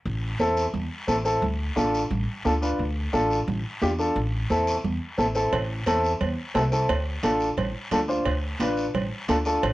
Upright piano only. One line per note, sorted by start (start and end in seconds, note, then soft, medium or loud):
0.40 0.64 C4 medium
0.40 0.64 E4 medium
0.40 0.64 A4 loud
1.07 1.14 C4 medium
1.07 1.14 E4 medium
1.07 1.14 A4 medium
1.25 1.42 C4 medium
1.25 1.42 E4 medium
1.25 1.43 A4 medium
1.76 2.00 D4 medium
1.76 2.00 F4 medium
1.76 2.01 A4 medium
2.45 2.51 D4 medium
2.45 2.51 F4 medium
2.45 2.51 A4 medium
2.62 2.80 D4 medium
2.62 2.80 F4 medium
2.62 2.80 B4 medium
3.13 3.37 D4 medium
3.13 3.37 F4 medium
3.13 3.37 A4 loud
3.81 3.88 D4 medium
3.81 3.88 F4 medium
3.81 3.88 G4 loud
3.99 4.16 D4 medium
3.99 4.16 F4 medium
3.99 4.16 A4 medium
4.50 4.74 C4 medium
4.50 4.74 E4 medium
4.50 4.74 A4 medium
5.18 5.24 C4 medium
5.18 5.24 E4 medium
5.18 5.25 A4 medium
5.35 5.53 C4 medium
5.35 5.54 E4 medium
5.35 5.54 A4 medium
5.86 6.11 C4 medium
5.86 6.11 E4 medium
5.86 6.11 A4 medium
6.54 6.61 C4 medium
6.54 6.61 E4 medium
6.54 6.61 A4 medium
6.72 6.89 C4 medium
6.72 6.89 E4 medium
6.72 6.89 A4 medium
7.23 7.47 D4 medium
7.23 7.47 F4 medium
7.23 7.48 A4 medium
7.92 7.98 D4 medium
7.92 7.98 F4 medium
7.92 7.98 A4 medium
8.08 8.27 D4 medium
8.08 8.27 F4 medium
8.08 8.27 C5 medium
8.60 8.84 D4 medium
8.60 8.84 F4 medium
8.60 8.84 B4 loud
9.28 9.34 D4 medium
9.28 9.35 F4 medium
9.28 9.35 A4 loud
9.45 9.63 D4 medium
9.45 9.63 F4 medium
9.45 9.63 A4 medium